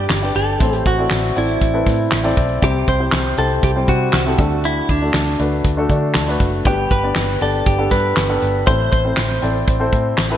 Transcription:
Already playing: grand piano G2 G3 D4 G4 B4 D5 E5, clean electric guitar G4
0.09 fingered electric bass G1, snare, clap, closed hi-hat
0.22 grand piano D4 G4 B4 D5
0.35 fingered electric bass G1, clean electric guitar A4, closed hi-hat
0.60 fingered electric bass A1, grand piano A2 C4 E4 A4 C5, kick, closed hi-hat
0.73 closed hi-hat
0.85 fingered electric bass A1, clean electric guitar F#4, kick, closed hi-hat
0.98 grand piano C4 E4 A4 D5
1.10 fingered electric bass A1, snare, clap, closed hi-hat
1.36 fingered electric bass A1, grand piano C4 E4 A4 D5, clean electric guitar E4, closed hi-hat
1.49 closed hi-hat
1.61 fingered electric bass A1, kick, closed hi-hat
1.74 grand piano C4 E4 A4 B4
1.86 fingered electric bass A2, kick, snare, closed hi-hat
2.12 fingered electric bass A1, snare, clap, closed hi-hat
2.24 grand piano C4 E4 A4 D5
2.37 fingered electric bass B1, kick, closed hi-hat
2.62 fingered electric bass C2, grand piano C3 C4 E4 G4 C5, clean electric guitar G4, kick, closed hi-hat
2.88 fingered electric bass C2, clean electric guitar C5, kick, closed hi-hat
2.99 grand piano C4 E4 G4 C5
3.12 fingered electric bass C2, snare, clap, closed hi-hat
3.38 fingered electric bass C2, grand piano C4 E4 G4 C5, clean electric guitar A4, closed hi-hat
3.63 fingered electric bass C2, clean electric guitar G4, kick, closed hi-hat
3.76 grand piano G3 C4 E4 C5
3.88 fingered electric bass C3, clean electric guitar F#4, kick, closed hi-hat
4.13 fingered electric bass C2, snare, clap, closed hi-hat
4.26 grand piano C4 E4 G4 A4
4.38 fingered electric bass D2, grand piano D3 A3 D4 F#4 A4, kick, closed hi-hat
4.64 clean electric guitar E4, closed hi-hat
4.89 fingered electric bass D2, clean electric guitar D4, kick, closed hi-hat
5.02 grand piano A3 D4 F#4 A4
5.14 fingered electric bass D2, snare, clap, closed hi-hat
5.39 fingered electric bass D2, grand piano A3 D4 F#4 B4, closed hi-hat
5.64 fingered electric bass D2, kick, closed hi-hat
5.77 grand piano A3 D4 F#4 A4
5.89 fingered electric bass D3, grand piano D5, kick, closed hi-hat
6.14 fingered electric bass D2, grand piano A5, snare, clap, closed hi-hat
6.28 grand piano A3 D4 F#4 B4
6.40 fingered electric bass F#1, kick, closed hi-hat
6.65 fingered electric bass G1, grand piano G2 B3 D4 G4 B4, clean electric guitar G4, kick, closed hi-hat
6.91 fingered electric bass G1, clean electric guitar B4, kick, closed hi-hat
7.03 grand piano B3 D4 G4 D5
7.15 fingered electric bass G1, snare, clap, closed hi-hat
7.41 fingered electric bass G1, grand piano B3 D4 G4 D5, clean electric guitar A4, closed hi-hat
7.66 fingered electric bass G1, clean electric guitar G4, kick, closed hi-hat
7.78 grand piano B3 D4 G4 A4
7.91 fingered electric bass G2, clean electric guitar B4, kick, snare, closed hi-hat
8.17 fingered electric bass G1, snare, clap, closed hi-hat
8.29 grand piano B3 D4 G4 A4
8.42 fingered electric bass G1, closed hi-hat
8.66 fingered electric bass A1, grand piano A2 C4 E4 A4 C5, clean electric guitar C5, kick, closed hi-hat
8.92 fingered electric bass A1, clean electric guitar C5, kick, closed hi-hat
9.05 grand piano C4 E4 A4 C5
9.17 fingered electric bass A1, snare, clap, closed hi-hat
9.42 fingered electric bass A1, grand piano C4 E4 A4 D5, closed hi-hat
9.67 fingered electric bass A1, kick, closed hi-hat
9.80 grand piano C4 E4 A4 C5
9.93 fingered electric bass A2, kick, closed hi-hat
10.18 fingered electric bass A1, snare, clap, closed hi-hat
10.30 grand piano C4 E4 A4 B4

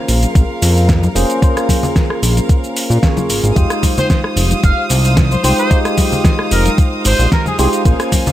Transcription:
Already playing: tine electric piano A#3 C#4 F4 G#4 C5, violin section A#4 F5
0.08 analog synth bass A#1, open hi-hat, shaker
0.23 closed hi-hat, high conga, shaker
0.35 analog synth bass A#1, kick, closed hi-hat, shaker
0.62 analog synth bass F2, open hi-hat, shaker
0.77 shaker
0.89 kick, snare, closed hi-hat, shaker
1.03 high conga, shaker
1.15 analog synth bass F1, tine electric piano A#3 C#4 F4 G#4 C5, open hi-hat, shaker
1.30 closed hi-hat, shaker
1.41 tine electric piano A#3 C#4 F4 G#4 C5, kick, closed hi-hat, shaker
1.57 cross-stick, closed hi-hat, shaker
1.69 kick, open hi-hat, high conga, shaker
1.83 low conga, shaker
1.96 kick, snare, closed hi-hat, shaker
2.10 cross-stick
2.23 analog synth bass A#1, open hi-hat, shaker
2.37 closed hi-hat, high conga, shaker
2.49 kick, closed hi-hat, shaker
2.64 shaker
2.77 open hi-hat, shaker
2.90 analog synth bass A#2, shaker
3.02 tine electric piano A#3 C#4 F4 G#4 C#5, kick, snare, closed hi-hat, shaker
3.17 high conga, low conga, shaker
3.29 analog synth bass G#1, open hi-hat, shaker
3.44 analog synth bass G#1, closed hi-hat, shaker
3.55 analog synth bass F1, tine electric piano G#3 D#4 F4 G4 C5, violin section C5 F5 D#6, kick, closed hi-hat, shaker
3.70 cross-stick, closed hi-hat, shaker
3.83 kick, open hi-hat, high conga, shaker
3.97 trumpet section C5, low conga, shaker
4.10 trumpet section C5, kick, snare, closed hi-hat, shaker
4.24 cross-stick
4.36 analog synth bass F1, open hi-hat, shaker
4.51 closed hi-hat, high conga, shaker
4.63 analog synth bass F1, trumpet section F5, kick, closed hi-hat, shaker
4.90 analog synth bass C2, open hi-hat, shaker
5.05 shaker
5.17 kick, snare, closed hi-hat, shaker
5.31 trumpet section C5, high conga, shaker
5.43 analog synth bass C2, tine electric piano G#3 D#4 F4 G4 C5, trumpet section C5, open hi-hat, shaker
5.58 trumpet section C5, closed hi-hat, shaker
5.69 tine electric piano G#3 D#4 F4 G4 C5, kick, closed hi-hat, shaker
5.85 cross-stick, closed hi-hat, shaker
5.98 kick, open hi-hat, high conga, shaker
6.12 low conga, shaker
6.25 kick, snare, closed hi-hat, shaker
6.39 cross-stick
6.51 analog synth bass F1, trumpet section A#4, open hi-hat, shaker
6.65 closed hi-hat, high conga, shaker
6.78 kick, closed hi-hat, shaker
7.05 analog synth bass G#1, trumpet section C5, open hi-hat, shaker
7.19 analog synth bass A#1, shaker
7.32 trumpet section A#4, kick, snare, closed hi-hat, shaker
7.46 trumpet section G#4, high conga, low conga, shaker
7.58 analog synth bass C2, tine electric piano G#3 D#4 F4 G4 C5, trumpet section G#4, open hi-hat, shaker
7.73 closed hi-hat, shaker
7.85 analog synth bass A#1, tine electric piano A#3 C#4 F4 G#4 C5, violin section A#4 G#5, kick, closed hi-hat, shaker
8.00 cross-stick, closed hi-hat, shaker
8.12 kick, open hi-hat, high conga, shaker
8.27 low conga, shaker

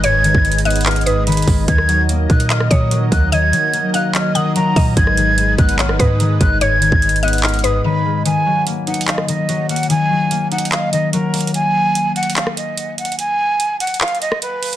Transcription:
Already playing: harp D#3 G#3 B3 D#4, analog synth pad G#3 D#4 B4 D#5
0.04 808-style bass F#1, harp G#2, synth pluck C#5, flute G#6, closed hi-hat
0.19 808-style bass G#1
0.24 harp D#3, closed hi-hat
0.34 808-style bass G#1, kick
0.45 harp G#3, closed hi-hat
0.52 closed hi-hat
0.58 closed hi-hat
0.65 harp B3, synth pluck D#5, flute F#6, closed hi-hat
0.70 closed hi-hat
0.76 closed hi-hat
0.81 closed hi-hat
0.86 harp D#4, flute F6, clap, closed hi-hat
0.91 closed hi-hat
0.96 closed hi-hat
1.01 closed hi-hat
1.06 harp G#2, synth pluck B4, flute D#6, closed hi-hat
1.27 harp D#3, flute B5, closed hi-hat
1.32 closed hi-hat
1.37 closed hi-hat
1.42 closed hi-hat
1.48 808-style bass G#1, harp G#3, kick, open hi-hat
1.68 808-style bass D#2, harp D#3, analog synth pad F#3 A#4 D#5, flute G#6, kick, closed hi-hat
1.78 cross-stick
1.89 harp F#3, closed hi-hat
2.09 harp A#3, closed hi-hat
2.30 808-style bass A#2, harp D#4, flute F#6, kick, closed hi-hat
2.40 closed hi-hat
2.50 harp D#5, synth pluck D#5, flute F6, clap, closed hi-hat
2.60 cross-stick
2.71 808-style bass A#2, harp D#3, synth pluck C#5, flute D#6, kick, closed hi-hat
2.91 harp F#3, closed hi-hat
3.12 808-style bass D#2, harp A#3, flute F#6, kick, closed hi-hat
3.32 harp D#3, synth pluck D#5, flute G#6, closed hi-hat
3.53 harp F#3, 808-style bass F#3, closed hi-hat
3.73 harp A#3, closed hi-hat
3.94 harp D#4, synth pluck F5, flute F#6, closed hi-hat
4.14 harp D#5, flute F6, clap, closed hi-hat
4.35 harp D#3, synth pluck F#5, flute D#6, closed hi-hat
4.55 harp F#3, flute A#5, closed hi-hat
4.76 808-style bass A#2, harp A#3, synth pluck D#5, kick, open hi-hat
4.97 808-style bass G#1, harp G#2, analog synth pad G#3 D#4 B4, flute G#6, kick, closed hi-hat
5.07 cross-stick
5.17 harp D#3, closed hi-hat
5.38 harp G#3, closed hi-hat
5.58 808-style bass G#1, harp B3, flute F#6, kick, closed hi-hat
5.69 closed hi-hat
5.79 808-style bass A#1, harp D#4, synth pluck C#5, flute F6, clap, closed hi-hat
5.89 808-style bass G#1, cross-stick
5.99 808-style bass G#2, harp G#2, synth pluck B4, flute D#6, kick, closed hi-hat
6.20 harp D#3, closed hi-hat
6.41 808-style bass G#1, harp G#3, flute F#6, kick, closed hi-hat
6.61 808-style bass F#1, harp G#2, synth pluck C#5, flute G#6, closed hi-hat
6.77 808-style bass G#1
6.82 harp D#3, closed hi-hat
6.92 808-style bass G#1, kick
7.02 harp G#3, closed hi-hat
7.09 closed hi-hat
7.16 closed hi-hat
7.23 harp B3, synth pluck D#5, flute F#6, closed hi-hat
7.28 closed hi-hat
7.33 closed hi-hat
7.38 closed hi-hat
7.43 harp D#4, flute F6, clap, closed hi-hat
7.49 closed hi-hat
7.54 closed hi-hat
7.59 closed hi-hat
7.64 harp G#2, synth pluck B4, flute D#6, closed hi-hat
7.84 harp D#3, flute B5
8.05 harp G#3
8.26 harp D#3, flute G#5, closed hi-hat
8.46 harp F#3
8.67 harp A#3, closed hi-hat
8.87 harp D#4, flute F#5, closed hi-hat
8.94 closed hi-hat
9.01 closed hi-hat
9.08 harp D#5, flute F5, clap, closed hi-hat
9.18 cross-stick
9.28 harp D#3, flute D#5, closed hi-hat
9.49 harp F#3, closed hi-hat
9.69 harp A#3, flute F#5, closed hi-hat
9.76 closed hi-hat
9.83 closed hi-hat
9.90 harp D#3, flute G#5, closed hi-hat
10.10 harp F#3
10.31 harp A#3, closed hi-hat
10.52 harp D#4, flute F#5, closed hi-hat
10.58 closed hi-hat
10.65 closed hi-hat
10.72 harp D#5, flute F5, clap, closed hi-hat
10.93 harp D#3, flute D#5, closed hi-hat
11.13 harp F#3, flute A#4, closed hi-hat
11.34 harp A#3, closed hi-hat, open hi-hat
11.41 closed hi-hat
11.47 closed hi-hat
11.54 flute G#5, closed hi-hat
11.95 closed hi-hat
12.16 flute F#5, closed hi-hat
12.23 closed hi-hat
12.30 closed hi-hat
12.36 flute F5, clap, closed hi-hat
12.47 cross-stick
12.57 flute D#5, closed hi-hat
12.77 closed hi-hat
12.98 flute F#5, closed hi-hat
13.05 closed hi-hat
13.12 closed hi-hat
13.19 flute G#5, closed hi-hat
13.60 closed hi-hat
13.80 flute F#5, closed hi-hat
13.87 closed hi-hat
13.94 closed hi-hat
14.01 flute F5, clap, closed hi-hat
14.08 closed hi-hat
14.15 closed hi-hat
14.21 flute D#5, closed hi-hat
14.32 cross-stick
14.42 flute B4, closed hi-hat
14.63 closed hi-hat, open hi-hat
14.73 closed hi-hat

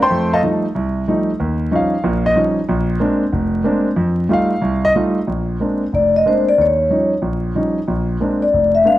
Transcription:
0.02 grand piano C5 G5 A5 C6
0.10 grand piano F2 A3
0.33 grand piano A4 D#5 F5 A5
0.43 grand piano F3 G3 A3 D#4
0.75 grand piano C2
1.08 grand piano F3 G3 A3 D#4
1.40 grand piano D#2
1.71 grand piano F3 G3 C#4 D#4
1.76 grand piano F5
2.04 grand piano A#1 A#2
2.26 grand piano D#5
2.36 grand piano F3 G3 C#4 D#4
2.69 grand piano A#1
3.00 grand piano G#3 A#3 C4 D4
3.33 grand piano F1
3.64 grand piano G#3 A#3 C4 D4
3.96 grand piano F2
4.29 grand piano G3 A3 D#4 F4
4.33 grand piano F5
4.62 grand piano C2
4.85 grand piano D#5
4.96 grand piano G3 A3 D#4 F4
5.27 grand piano A#1
5.60 grand piano G#3 A#3 C4 D4
5.93 grand piano F1, vibraphone D5
6.16 vibraphone D#5
6.26 grand piano G#3 A#3 C4 D4, vibraphone C5
6.49 vibraphone D5
6.58 grand piano D#2, vibraphone C#5
6.90 grand piano F3 G3 C#4 D#4
7.22 grand piano A#1
7.55 grand piano F3 G3 C#4 D#4
7.88 grand piano A#1
8.21 grand piano G#3 A#3 C4 D4
8.42 vibraphone D5
8.53 grand piano F1
8.75 vibraphone E5
8.84 grand piano G#3 A#3 C4 D4, vibraphone F5

